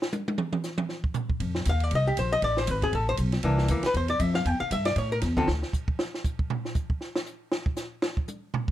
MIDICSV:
0, 0, Header, 1, 5, 480
1, 0, Start_track
1, 0, Tempo, 254345
1, 734, Time_signature, 4, 2, 24, 8
1, 16443, End_track
2, 0, Start_track
2, 0, Title_t, "Hollow-body jazz guitar"
2, 0, Program_c, 0, 26
2, 3198, Note_on_c, 0, 77, 96
2, 3462, Note_off_c, 0, 77, 0
2, 3462, Note_on_c, 0, 74, 106
2, 3635, Note_off_c, 0, 74, 0
2, 3685, Note_on_c, 0, 75, 103
2, 3914, Note_on_c, 0, 67, 75
2, 3918, Note_off_c, 0, 75, 0
2, 4101, Note_off_c, 0, 67, 0
2, 4131, Note_on_c, 0, 72, 93
2, 4381, Note_off_c, 0, 72, 0
2, 4388, Note_on_c, 0, 75, 113
2, 4577, Note_off_c, 0, 75, 0
2, 4605, Note_on_c, 0, 74, 95
2, 4858, Note_off_c, 0, 74, 0
2, 4870, Note_on_c, 0, 72, 90
2, 5105, Note_off_c, 0, 72, 0
2, 5105, Note_on_c, 0, 71, 93
2, 5348, Note_off_c, 0, 71, 0
2, 5349, Note_on_c, 0, 68, 95
2, 5538, Note_off_c, 0, 68, 0
2, 5563, Note_on_c, 0, 69, 74
2, 5817, Note_off_c, 0, 69, 0
2, 5829, Note_on_c, 0, 72, 96
2, 5946, Note_off_c, 0, 72, 0
2, 6488, Note_on_c, 0, 52, 69
2, 6498, Note_on_c, 0, 58, 65
2, 6508, Note_on_c, 0, 62, 71
2, 6951, Note_off_c, 0, 52, 0
2, 6956, Note_off_c, 0, 58, 0
2, 6961, Note_off_c, 0, 62, 0
2, 6981, Note_on_c, 0, 52, 56
2, 7003, Note_on_c, 0, 58, 62
2, 7226, Note_off_c, 0, 52, 0
2, 7237, Note_off_c, 0, 58, 0
2, 7286, Note_on_c, 0, 71, 97
2, 7467, Note_off_c, 0, 71, 0
2, 7487, Note_on_c, 0, 72, 83
2, 7724, Note_off_c, 0, 72, 0
2, 7732, Note_on_c, 0, 74, 93
2, 7961, Note_off_c, 0, 74, 0
2, 7961, Note_on_c, 0, 76, 94
2, 8204, Note_off_c, 0, 76, 0
2, 8211, Note_on_c, 0, 77, 99
2, 8428, Note_off_c, 0, 77, 0
2, 8428, Note_on_c, 0, 79, 103
2, 8677, Note_off_c, 0, 79, 0
2, 8684, Note_on_c, 0, 77, 97
2, 8886, Note_off_c, 0, 77, 0
2, 8914, Note_on_c, 0, 76, 97
2, 9163, Note_on_c, 0, 74, 98
2, 9173, Note_off_c, 0, 76, 0
2, 9366, Note_off_c, 0, 74, 0
2, 9402, Note_on_c, 0, 73, 80
2, 9656, Note_off_c, 0, 73, 0
2, 9664, Note_on_c, 0, 70, 98
2, 9783, Note_off_c, 0, 70, 0
2, 10129, Note_on_c, 0, 50, 72
2, 10135, Note_on_c, 0, 60, 72
2, 10145, Note_on_c, 0, 65, 75
2, 10149, Note_on_c, 0, 69, 77
2, 10315, Note_off_c, 0, 50, 0
2, 10318, Note_off_c, 0, 60, 0
2, 10323, Note_off_c, 0, 65, 0
2, 10325, Note_off_c, 0, 69, 0
2, 16443, End_track
3, 0, Start_track
3, 0, Title_t, "Upright bass"
3, 0, Program_c, 1, 32
3, 2642, Note_on_c, 1, 41, 82
3, 3113, Note_off_c, 1, 41, 0
3, 3131, Note_on_c, 1, 39, 90
3, 3598, Note_off_c, 1, 39, 0
3, 3608, Note_on_c, 1, 36, 86
3, 4077, Note_off_c, 1, 36, 0
3, 4094, Note_on_c, 1, 34, 84
3, 4559, Note_off_c, 1, 34, 0
3, 4570, Note_on_c, 1, 33, 89
3, 5038, Note_off_c, 1, 33, 0
3, 5051, Note_on_c, 1, 32, 95
3, 5518, Note_off_c, 1, 32, 0
3, 5526, Note_on_c, 1, 33, 88
3, 5992, Note_off_c, 1, 33, 0
3, 6003, Note_on_c, 1, 35, 83
3, 6467, Note_off_c, 1, 35, 0
3, 6478, Note_on_c, 1, 36, 88
3, 6946, Note_off_c, 1, 36, 0
3, 6957, Note_on_c, 1, 38, 95
3, 7213, Note_off_c, 1, 38, 0
3, 7437, Note_on_c, 1, 40, 87
3, 7905, Note_off_c, 1, 40, 0
3, 7916, Note_on_c, 1, 41, 90
3, 8388, Note_off_c, 1, 41, 0
3, 8399, Note_on_c, 1, 40, 91
3, 8663, Note_off_c, 1, 40, 0
3, 8882, Note_on_c, 1, 43, 86
3, 9347, Note_off_c, 1, 43, 0
3, 9358, Note_on_c, 1, 45, 97
3, 9833, Note_off_c, 1, 45, 0
3, 9848, Note_on_c, 1, 40, 88
3, 10318, Note_off_c, 1, 40, 0
3, 10336, Note_on_c, 1, 38, 87
3, 10604, Note_off_c, 1, 38, 0
3, 16443, End_track
4, 0, Start_track
4, 0, Title_t, "Muted upright bass strokes"
4, 7224, Note_on_c, 9, 29, 41
4, 7413, Note_off_c, 9, 29, 0
4, 8681, Note_on_c, 9, 29, 46
4, 8869, Note_off_c, 9, 29, 0
4, 16443, End_track
5, 0, Start_track
5, 0, Title_t, "Drums"
5, 39, Note_on_c, 9, 38, 91
5, 228, Note_off_c, 9, 38, 0
5, 230, Note_on_c, 9, 44, 57
5, 240, Note_on_c, 9, 48, 96
5, 419, Note_off_c, 9, 44, 0
5, 428, Note_off_c, 9, 48, 0
5, 527, Note_on_c, 9, 48, 105
5, 716, Note_off_c, 9, 48, 0
5, 717, Note_on_c, 9, 47, 103
5, 905, Note_off_c, 9, 47, 0
5, 992, Note_on_c, 9, 47, 99
5, 1181, Note_off_c, 9, 47, 0
5, 1196, Note_on_c, 9, 44, 62
5, 1206, Note_on_c, 9, 38, 42
5, 1385, Note_off_c, 9, 44, 0
5, 1395, Note_off_c, 9, 38, 0
5, 1466, Note_on_c, 9, 47, 109
5, 1655, Note_off_c, 9, 47, 0
5, 1679, Note_on_c, 9, 38, 44
5, 1868, Note_off_c, 9, 38, 0
5, 1960, Note_on_c, 9, 36, 73
5, 2148, Note_on_c, 9, 44, 56
5, 2149, Note_off_c, 9, 36, 0
5, 2158, Note_on_c, 9, 43, 105
5, 2337, Note_off_c, 9, 44, 0
5, 2347, Note_off_c, 9, 43, 0
5, 2445, Note_on_c, 9, 36, 80
5, 2633, Note_off_c, 9, 36, 0
5, 2643, Note_on_c, 9, 51, 68
5, 2651, Note_on_c, 9, 36, 25
5, 2832, Note_off_c, 9, 51, 0
5, 2840, Note_off_c, 9, 36, 0
5, 2922, Note_on_c, 9, 38, 66
5, 3110, Note_off_c, 9, 38, 0
5, 3119, Note_on_c, 9, 44, 62
5, 3119, Note_on_c, 9, 51, 77
5, 3130, Note_on_c, 9, 36, 24
5, 3308, Note_off_c, 9, 44, 0
5, 3308, Note_off_c, 9, 51, 0
5, 3318, Note_off_c, 9, 36, 0
5, 3399, Note_on_c, 9, 51, 52
5, 3588, Note_off_c, 9, 51, 0
5, 3600, Note_on_c, 9, 51, 70
5, 3612, Note_on_c, 9, 36, 23
5, 3788, Note_off_c, 9, 51, 0
5, 3801, Note_off_c, 9, 36, 0
5, 4090, Note_on_c, 9, 44, 56
5, 4090, Note_on_c, 9, 51, 76
5, 4093, Note_on_c, 9, 36, 25
5, 4279, Note_off_c, 9, 44, 0
5, 4279, Note_off_c, 9, 51, 0
5, 4282, Note_off_c, 9, 36, 0
5, 4566, Note_on_c, 9, 51, 67
5, 4574, Note_on_c, 9, 36, 22
5, 4755, Note_off_c, 9, 51, 0
5, 4763, Note_off_c, 9, 36, 0
5, 4847, Note_on_c, 9, 38, 66
5, 5035, Note_off_c, 9, 38, 0
5, 5040, Note_on_c, 9, 44, 66
5, 5040, Note_on_c, 9, 51, 79
5, 5051, Note_on_c, 9, 36, 21
5, 5228, Note_off_c, 9, 44, 0
5, 5228, Note_off_c, 9, 51, 0
5, 5240, Note_off_c, 9, 36, 0
5, 5322, Note_on_c, 9, 51, 55
5, 5328, Note_on_c, 9, 36, 61
5, 5511, Note_off_c, 9, 51, 0
5, 5517, Note_off_c, 9, 36, 0
5, 5524, Note_on_c, 9, 51, 65
5, 5529, Note_on_c, 9, 36, 28
5, 5713, Note_off_c, 9, 51, 0
5, 5718, Note_off_c, 9, 36, 0
5, 5987, Note_on_c, 9, 44, 64
5, 5987, Note_on_c, 9, 51, 72
5, 6004, Note_on_c, 9, 36, 19
5, 6176, Note_off_c, 9, 44, 0
5, 6176, Note_off_c, 9, 51, 0
5, 6193, Note_off_c, 9, 36, 0
5, 6269, Note_on_c, 9, 51, 53
5, 6278, Note_on_c, 9, 38, 52
5, 6457, Note_off_c, 9, 51, 0
5, 6467, Note_off_c, 9, 38, 0
5, 6467, Note_on_c, 9, 51, 68
5, 6482, Note_on_c, 9, 36, 22
5, 6656, Note_off_c, 9, 51, 0
5, 6670, Note_off_c, 9, 36, 0
5, 6757, Note_on_c, 9, 38, 54
5, 6946, Note_off_c, 9, 38, 0
5, 6949, Note_on_c, 9, 44, 57
5, 6949, Note_on_c, 9, 51, 82
5, 6963, Note_on_c, 9, 36, 22
5, 7138, Note_off_c, 9, 44, 0
5, 7138, Note_off_c, 9, 51, 0
5, 7151, Note_off_c, 9, 36, 0
5, 7222, Note_on_c, 9, 51, 55
5, 7231, Note_on_c, 9, 38, 66
5, 7411, Note_off_c, 9, 51, 0
5, 7420, Note_off_c, 9, 38, 0
5, 7441, Note_on_c, 9, 51, 67
5, 7444, Note_on_c, 9, 36, 29
5, 7630, Note_off_c, 9, 51, 0
5, 7633, Note_off_c, 9, 36, 0
5, 7703, Note_on_c, 9, 51, 52
5, 7892, Note_off_c, 9, 51, 0
5, 7917, Note_on_c, 9, 44, 54
5, 7917, Note_on_c, 9, 51, 75
5, 7925, Note_on_c, 9, 36, 24
5, 8106, Note_off_c, 9, 44, 0
5, 8106, Note_off_c, 9, 51, 0
5, 8114, Note_off_c, 9, 36, 0
5, 8196, Note_on_c, 9, 38, 62
5, 8384, Note_off_c, 9, 38, 0
5, 8406, Note_on_c, 9, 51, 73
5, 8408, Note_on_c, 9, 36, 26
5, 8595, Note_off_c, 9, 51, 0
5, 8597, Note_off_c, 9, 36, 0
5, 8885, Note_on_c, 9, 44, 62
5, 8885, Note_on_c, 9, 51, 79
5, 8889, Note_on_c, 9, 36, 22
5, 9074, Note_off_c, 9, 44, 0
5, 9074, Note_off_c, 9, 51, 0
5, 9078, Note_off_c, 9, 36, 0
5, 9154, Note_on_c, 9, 51, 57
5, 9164, Note_on_c, 9, 38, 73
5, 9343, Note_off_c, 9, 51, 0
5, 9352, Note_off_c, 9, 38, 0
5, 9356, Note_on_c, 9, 51, 72
5, 9366, Note_on_c, 9, 36, 30
5, 9545, Note_off_c, 9, 51, 0
5, 9555, Note_off_c, 9, 36, 0
5, 9841, Note_on_c, 9, 44, 52
5, 9841, Note_on_c, 9, 51, 73
5, 9850, Note_on_c, 9, 38, 43
5, 9851, Note_on_c, 9, 36, 26
5, 10030, Note_off_c, 9, 44, 0
5, 10030, Note_off_c, 9, 51, 0
5, 10039, Note_off_c, 9, 38, 0
5, 10040, Note_off_c, 9, 36, 0
5, 10131, Note_on_c, 9, 36, 63
5, 10320, Note_off_c, 9, 36, 0
5, 10335, Note_on_c, 9, 38, 101
5, 10524, Note_off_c, 9, 38, 0
5, 10617, Note_on_c, 9, 38, 49
5, 10806, Note_off_c, 9, 38, 0
5, 10820, Note_on_c, 9, 44, 60
5, 10821, Note_on_c, 9, 36, 78
5, 11009, Note_off_c, 9, 44, 0
5, 11010, Note_off_c, 9, 36, 0
5, 11094, Note_on_c, 9, 36, 91
5, 11283, Note_off_c, 9, 36, 0
5, 11303, Note_on_c, 9, 38, 102
5, 11492, Note_off_c, 9, 38, 0
5, 11595, Note_on_c, 9, 38, 51
5, 11780, Note_on_c, 9, 44, 58
5, 11784, Note_off_c, 9, 38, 0
5, 11786, Note_on_c, 9, 36, 84
5, 11969, Note_off_c, 9, 44, 0
5, 11974, Note_off_c, 9, 36, 0
5, 12063, Note_on_c, 9, 36, 85
5, 12252, Note_off_c, 9, 36, 0
5, 12269, Note_on_c, 9, 43, 107
5, 12458, Note_off_c, 9, 43, 0
5, 12552, Note_on_c, 9, 38, 48
5, 12730, Note_on_c, 9, 44, 59
5, 12741, Note_off_c, 9, 38, 0
5, 12743, Note_on_c, 9, 36, 84
5, 12919, Note_off_c, 9, 44, 0
5, 12931, Note_off_c, 9, 36, 0
5, 13017, Note_on_c, 9, 36, 83
5, 13206, Note_off_c, 9, 36, 0
5, 13224, Note_on_c, 9, 38, 39
5, 13412, Note_off_c, 9, 38, 0
5, 13503, Note_on_c, 9, 38, 103
5, 13692, Note_off_c, 9, 38, 0
5, 13705, Note_on_c, 9, 44, 60
5, 13894, Note_off_c, 9, 44, 0
5, 14183, Note_on_c, 9, 38, 110
5, 14372, Note_off_c, 9, 38, 0
5, 14456, Note_on_c, 9, 36, 89
5, 14644, Note_off_c, 9, 36, 0
5, 14649, Note_on_c, 9, 44, 63
5, 14658, Note_on_c, 9, 38, 53
5, 14838, Note_off_c, 9, 44, 0
5, 14847, Note_off_c, 9, 38, 0
5, 15140, Note_on_c, 9, 38, 106
5, 15329, Note_off_c, 9, 38, 0
5, 15419, Note_on_c, 9, 36, 79
5, 15608, Note_off_c, 9, 36, 0
5, 15620, Note_on_c, 9, 44, 57
5, 15629, Note_on_c, 9, 48, 43
5, 15809, Note_off_c, 9, 44, 0
5, 15818, Note_off_c, 9, 48, 0
5, 16112, Note_on_c, 9, 43, 114
5, 16301, Note_off_c, 9, 43, 0
5, 16382, Note_on_c, 9, 36, 88
5, 16443, Note_off_c, 9, 36, 0
5, 16443, End_track
0, 0, End_of_file